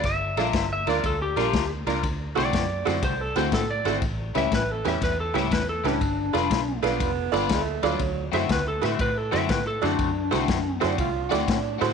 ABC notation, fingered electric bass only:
X:1
M:4/4
L:1/8
Q:"Swing" 1/4=121
K:Dmix
V:1 name="Fingered electric bass" clef=bass
G,,, _B,,, G,,, D,, D,, B,,, D,, ^C,, | D,, C,, F,, F,, C,, D,, A,, ^G,,, | A,,, ^C,, A,,, E,, E,, C,, E,, C,, | G,,, =F,,, B,,, B,,, F,,, G,,, D,, D,, |
D,, F,, D,, A,, A,, F,, A,, F,, | F,, C,, F,, F,, C,, D,, A,, A,, |]